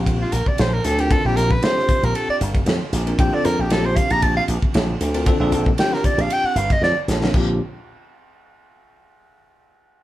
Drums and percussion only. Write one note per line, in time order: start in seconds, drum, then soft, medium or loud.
0.06 kick medium
0.06 ride medium
0.32 hi-hat pedal medium
0.32 ride medium
0.46 kick medium
0.58 snare loud
0.58 ride medium
0.84 snare soft
0.84 hi-hat pedal medium
0.84 ride medium
0.99 ride medium
1.11 kick loud
1.11 ride medium
1.37 snare soft
1.37 hi-hat pedal medium
1.37 ride medium
1.50 kick medium
1.62 snare loud
1.62 ride medium
1.78 snare soft
1.89 kick medium
1.89 hi-hat pedal medium
1.89 ride medium
2.03 ride medium
2.15 ride medium
2.41 hi-hat pedal medium
2.41 ride medium
2.55 kick medium
2.55 ride medium
2.66 snare loud
2.66 ride medium
2.93 snare soft
2.93 hi-hat pedal medium
2.93 ride medium
3.07 ride medium
3.19 kick loud
3.19 ride medium
3.45 snare soft
3.45 hi-hat pedal medium
3.45 ride medium
3.70 snare loud
3.70 ride medium
3.97 kick medium
3.97 hi-hat pedal medium
3.97 ride medium
4.10 ride medium
4.22 kick medium
4.22 ride medium
4.48 hi-hat pedal medium
4.48 ride medium
4.62 kick medium
4.74 snare loud
4.74 ride medium
5.01 hi-hat pedal medium
5.01 ride medium
5.14 ride medium
5.26 kick loud
5.26 ride medium
5.52 hi-hat pedal medium
5.52 ride medium
5.66 kick medium
5.78 snare loud
5.78 ride medium
5.93 snare soft
6.04 kick medium
6.04 hi-hat pedal medium
6.04 ride medium
6.19 ride medium
6.30 ride medium
6.56 hi-hat pedal medium
6.56 ride medium
6.70 kick medium
6.70 ride medium
6.83 snare medium
7.08 snare medium
7.08 hi-hat pedal medium
7.24 snare medium
7.34 kick loud
7.34 crash medium